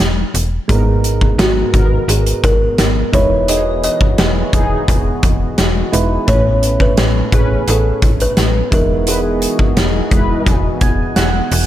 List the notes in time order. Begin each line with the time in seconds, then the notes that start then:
0.00 E1
0.34 E1, closed hi-hat
0.68 G#1 G#2 D#3 G#3 A#3 B3 D#4 G#4 A#4, kick, closed hi-hat
0.75 B3
1.04 closed hi-hat
1.21 kick
1.38 G#1 F#4, snare, closed hi-hat
1.74 G#1 D#3 B3 A#4, kick, closed hi-hat
2.08 G#1 G#4, closed hi-hat
2.26 closed hi-hat
2.44 G#1 A#4, kick, closed hi-hat
2.78 G#1, snare, closed hi-hat
3.12 E1 E3 G#3 D#4 E4 F#4 G#4 B4 C#5 D#5, kick, closed hi-hat
3.48 E3 D#4 G#4 D#5, closed hi-hat
3.84 D#5, closed hi-hat
4.01 kick
4.18 E1, snare, closed hi-hat
4.53 E1 E3 D#4 G#4, kick, closed hi-hat
4.88 E1, kick, closed hi-hat
5.23 E1, kick, closed hi-hat
5.58 E1, snare, closed hi-hat
5.92 E1 G#3 D#4 E4 B4, closed hi-hat
6.27 A1 A2 E3 A3 C#4 E4 B4 C#5, kick, closed hi-hat
6.63 closed hi-hat
6.80 B4, kick
6.97 A1, snare, closed hi-hat
7.32 A1 E3 C#4 G#4 B4, kick, closed hi-hat
7.68 A1 A4, closed hi-hat
8.02 A1, kick, closed hi-hat
8.20 B4, closed hi-hat
8.37 A1, snare, closed hi-hat
8.71 E1 E3 G#3 B3 D#4 E4 F#4 G#4 A#4 D#5, kick, closed hi-hat
9.06 G#3 E4 G#4 B4, closed hi-hat
9.42 closed hi-hat
9.59 kick
9.77 E1, snare, closed hi-hat
10.11 E1 G#3 E4 B4, kick, closed hi-hat
10.46 E1, kick, closed hi-hat
10.81 E1 G#5, kick, closed hi-hat
11.16 E1 F#5, snare, closed hi-hat
11.51 E1, open hi-hat